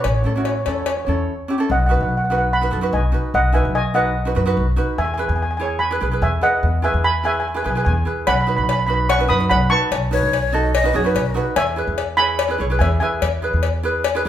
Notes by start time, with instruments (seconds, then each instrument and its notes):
0.04 upright bass A1, steel pan C#5, cowbell
0.14 steel pan C#5
0.22 upright bass A2, ukulele C#4 E4 A4, steel pan C#5
0.30 steel pan C#5
0.36 ukulele C#4 E4 F#4, steel pan C#5
0.44 steel pan C#5, cowbell
0.52 steel pan C#5
0.61 steel pan C#5
0.66 upright bass E2, ukulele C#4 E4 A4, steel pan C#5, cowbell
0.75 steel pan C#5
0.82 steel pan C#5
0.86 steel pan C#5, cowbell
0.97 steel pan C#5
1.05 upright bass E2, ukulele C#4 E4 A4, steel pan C#5
1.12 steel pan C#5
1.48 ukulele C#4 E4 G4
1.58 ukulele C#4 E4 A4
1.70 upright bass B1, steel pan D#5 F#5
1.79 steel pan F#5
1.86 ukulele D#4 F#4, steel pan F#5
1.91 ukulele B4, steel pan F#5
2.01 upright bass B1, steel pan F#5
2.09 steel pan F#5
2.17 steel pan F#5
2.24 steel pan F#5
2.30 ukulele D#4 F#4 B4, steel pan F#5
2.38 steel pan F#5
2.53 steel pan F#5 B5
2.61 ukulele D#4 F#4 B4
2.71 upright bass F#2, ukulele D#4 F#4 A4
2.81 ukulele D#4 F#4 B4
2.93 upright bass B1, steel pan D#5 G#5
3.12 ukulele D#4 F#4 B4
3.34 upright bass B1, steel pan D#5 F#5
3.52 ukulele D#4 F#4 B4, steel pan E5 G#5
3.65 upright bass B1
3.75 steel pan D#5 G#5
3.94 ukulele D#4 F#4 B4, steel pan D#5 F#5
4.25 ukulele D#4 F#4 B4
4.35 upright bass F#2, ukulele D#4 F#4 B4
4.46 ukulele D#4 F#4 B4
4.57 upright bass B1
4.76 ukulele D#4 F#4 B4
4.98 upright bass E2, steel pan E5 G#5
5.05 steel pan G#5
5.14 ukulele E4, steel pan G#5
5.18 ukulele G#4 B4, steel pan G#5
5.28 upright bass E2, steel pan G#5
5.36 steel pan G#5
5.42 steel pan G#5
5.51 steel pan G#5
5.57 ukulele E4 G#4 C#5, steel pan G#5
5.65 steel pan G#5
5.79 steel pan G#5 B5
5.91 ukulele E4 G#4 B4
6.00 upright bass B1, ukulele E4 G#4 B4
6.11 ukulele E4 G#4 B4
6.22 upright bass E2, steel pan E5 G#5
6.41 ukulele E4 G#4 B4, steel pan D#5 F#5
6.63 upright bass E2
6.82 ukulele E4 G#4 B4, steel pan E5 G#5
6.94 upright bass E2
7.04 steel pan G#5 B5
7.23 ukulele E4 G#4 B4, steel pan E5 G#5
7.32 steel pan G#5
7.40 steel pan G#5
7.48 steel pan G#5
7.54 ukulele E4 G#4 B4, steel pan G#5
7.63 upright bass B1, ukulele E4 G#4 B4, steel pan G#5
7.70 steel pan G#5
7.75 ukulele E4 G#4 B4, steel pan G#5
7.85 upright bass E2, steel pan G#5
7.93 steel pan G#5
8.05 ukulele E4 G#4 B4
8.27 upright bass B1, steel pan F#5 B5, cowbell
8.35 steel pan B5
8.41 steel pan B5
8.47 ukulele D#4 F#4 B4, steel pan B5
8.56 upright bass B1, steel pan B5
8.64 steel pan B5
8.69 steel pan B5, cowbell
8.79 steel pan B5
8.87 ukulele D#4 F#4 B4, steel pan B5
8.94 steel pan B5
9.09 steel pan F#5 C#6, cowbell
9.19 ukulele D#4 F#4 B4
9.28 upright bass F#2, ukulele D#4 F#4 B4, steel pan B5 D#6
9.38 ukulele D#4 F#4 B4
9.50 upright bass B1, steel pan F#5 B5, cowbell
9.70 ukulele D#4 F#4 B4, steel pan A5 C#6
9.91 upright bass B1, cowbell
10.11 ukulele D#4 F#4 B4, flute C#5
10.23 upright bass B1
10.33 cowbell
10.52 ukulele D#4 F#4 A4, flute D#5
10.74 flute D#5, cowbell
10.84 ukulele D#4 F#4 B4
10.93 upright bass F#2, ukulele D#4 F#4 G#4, flute C#5
11.04 ukulele D#4 F#4 B4
11.15 upright bass B1, flute B4, cowbell
11.34 ukulele D#4 F#4 B4
11.56 upright bass E2, steel pan E5 G#5, cowbell
11.76 ukulele E4 G#4 B4
11.87 upright bass E2
11.98 cowbell
12.17 ukulele E4 G#4 C#5, steel pan G#5 B5
12.39 cowbell
12.48 ukulele E4 G#4 B4
12.58 upright bass B1, ukulele E4 G#4 C#5
12.70 ukulele E4 G#4 B4
12.79 upright bass E2, steel pan E5 G#5, cowbell
13.00 ukulele E4 G#4 B4, steel pan E5 G#5
13.22 upright bass E2, cowbell
13.42 ukulele E4 G#4 B4
13.53 upright bass E2
13.63 cowbell
13.83 ukulele E4 G#4 B4
14.04 cowbell
14.15 ukulele E4 G#4 B4
14.25 upright bass B1, ukulele E4